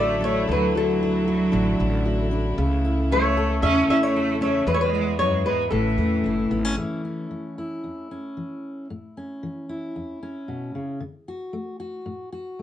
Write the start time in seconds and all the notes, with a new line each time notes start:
Already playing: A1 D3 F#3 A3 D4 E4 F#4 A4
0.00 A3 D5
0.21 D4 C#5
0.25 A3
0.47 D2 D3 F#3
0.51 B4
0.75 F#3 F#4 A4
1.03 F#4
1.28 F#4
1.52 A1 D4
1.80 A1 F#4
2.05 F#4
2.31 D4
2.58 C#2 C#3 E3
2.85 E4
3.12 A3 A4 C#5
3.37 A4
3.62 E2 C#4 E5
3.88 E2 C#4 E4 E5
4.03 A3 C#5
4.16 A4
4.41 A3 C#4 C#5
4.66 E2 B2 G#3 B4
4.73 A3 C#5
4.81 G#3 B4
4.95 B3
5.19 F#2 G#3 C#5
5.45 G#2 G#3 B4
5.71 A1 A2 C#3 E3 A3 A4
5.98 E2 A3
6.24 F#1 E4
6.51 G#1 B3
6.65 C#4
6.76 A2 E3 A3 C#4 E4
7.05 C#4
7.31 E3
7.58 E4
7.84 E2
8.11 C#4
8.37 E3
8.90 A2
9.17 C#4
9.43 E3
9.69 E4
9.96 E2
10.23 C#4
10.48 B2
10.75 C#3
11.00 D3
11.28 F#4
11.53 A3
11.80 F#4
12.06 A2
12.32 F#4
12.59 A3